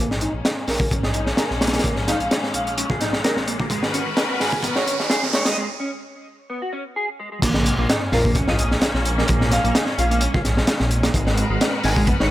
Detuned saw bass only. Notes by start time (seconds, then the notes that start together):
Already playing: A#1
0.34 A#1
0.68 A#1
1.04 A#1
1.50 A#1
1.84 A#1
2.20 A#1
2.54 A#1
2.90 A#1
3.36 A#1
3.70 G#1
4.06 G#1
4.40 G#1
4.76 G#1
5.23 G#1
7.42 A#1
7.78 A#1
8.13 A#1
8.48 A#1
8.95 A#1
9.29 A#1
9.64 A#1
9.98 A#1
10.34 A#1
10.80 A#1
11.14 G#1
11.50 G#1
11.84 G#1
12.20 G#1